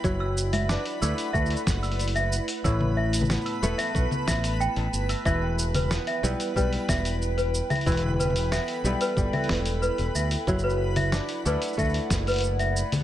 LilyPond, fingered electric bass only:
\new Staff \with { instrumentName = "Fingered electric bass" } { \clef bass \time 4/4 \key e \minor \tempo 4 = 92 fis,,4 r8 d,16 r16 d,16 r16 fis,,4 r8 | a,,4 r8 e,,16 r16 b,,16 r16 a,,8 r16 a,,16 g,,16 r16 | e,,4 r8 b,,16 r16 b,,16 r16 e,,4 r8 | e,,4 r8 b,,16 r16 g,,16 r16 e,,8 r16 e,,16 d,16 r16 |
fis,,4 r8 d,16 r16 d,16 r16 fis,,4 r8 | }